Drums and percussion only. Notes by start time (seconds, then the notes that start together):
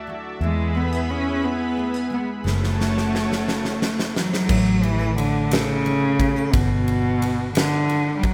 2.47 snare
2.64 snare
2.81 snare
2.98 snare
3.15 snare
3.32 snare
3.48 snare
3.65 snare
3.82 snare
3.99 snare
4.16 snare
4.34 snare
4.49 kick, crash
4.83 ride
5.18 ride
5.51 snare, ride
5.86 ride
6.20 kick, ride
6.53 kick, ride
6.88 ride
7.22 ride
7.55 snare, ride
7.89 ride
8.23 kick, ride